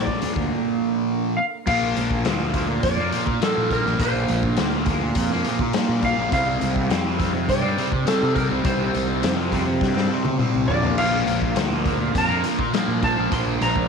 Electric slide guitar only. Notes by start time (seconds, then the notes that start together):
Already playing: D5
1.37 F5
1.67 F5
2.83 D5
3.44 A4
3.73 A#4
4.01 C5
4.78 A#4
6.05 F5
6.33 F5
7.50 D5
8.07 A4
8.36 A#4
8.65 C5
10.68 D5
10.98 F5
12.18 A#5
12.78 A5
13.04 A5
13.33 C6
13.62 A#5